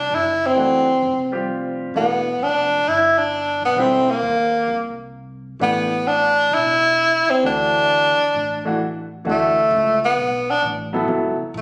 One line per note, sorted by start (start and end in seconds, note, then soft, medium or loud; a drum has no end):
0.00 0.17 D4 medium
0.10 0.98 F#1 medium
0.15 0.48 E4 loud
0.46 1.35 C4 medium
0.56 0.84 E3 medium
0.56 0.84 A3 medium
0.56 0.84 D4 medium
0.56 0.85 F#4 medium
1.02 1.90 F1 medium
1.32 1.90 G3 medium
1.32 1.91 C4 medium
1.32 1.91 F4 medium
1.32 1.91 G4 medium
1.94 2.37 E1 medium
1.94 2.22 E3 medium
1.94 2.22 A3 medium
1.94 2.45 B3 medium
1.94 2.22 D4 soft
1.94 2.23 F#4 medium
2.39 2.82 F1 medium
2.43 2.90 D4 medium
2.85 3.58 G1 medium
2.85 3.20 E4 medium
3.18 3.63 D4 medium
3.62 3.76 B1 medium
3.62 3.82 B3 medium
3.76 4.19 E1 medium
3.76 4.04 D3 medium
3.76 4.05 G3 medium
3.76 4.05 C4 medium
3.76 4.12 C4 medium
3.76 4.05 E4 medium
4.11 5.01 A#3 medium
4.21 4.64 D#2 medium
4.68 5.55 C2 medium
5.59 6.47 A1 medium
5.59 5.87 E3 medium
5.59 5.88 A3 medium
5.59 6.09 B3 medium
5.59 5.88 D4 medium
5.59 5.88 G4 medium
6.07 6.56 D4 loud
6.51 7.23 E1 medium
6.51 7.32 E4 loud
7.27 7.44 C4 medium
7.27 muted upright bass stroke soft
7.42 8.15 D2 medium
7.42 8.13 E3 medium
7.42 8.13 A3 medium
7.42 8.13 D4 medium
7.42 8.78 D4 medium
7.42 8.13 F#4 medium
8.19 muted upright bass stroke soft
8.34 9.21 A1 medium
8.65 8.79 E3 medium
8.65 8.79 A3 medium
8.65 8.79 D4 medium
8.65 8.79 F#4 medium
9.25 9.70 D2 medium
9.25 9.52 E3 medium
9.25 9.53 A3 medium
9.25 9.53 D4 medium
9.25 9.53 F#4 medium
9.31 10.00 A3 medium
9.71 10.15 C#2 loud
10.05 10.52 B3 medium
10.17 10.61 B1 medium
10.50 10.64 D4 medium
10.63 11.07 A1 medium
10.93 11.06 F#3 medium
10.93 11.07 B3 medium
10.93 11.07 E4 medium
10.93 11.08 A4 medium
11.08 11.36 C#2 medium
11.08 11.35 F#3 medium
11.08 11.36 B3 medium
11.08 11.36 E4 medium
11.08 11.36 A4 medium
11.39 muted upright bass stroke soft
11.54 11.61 B1 loud
11.54 11.61 A3 medium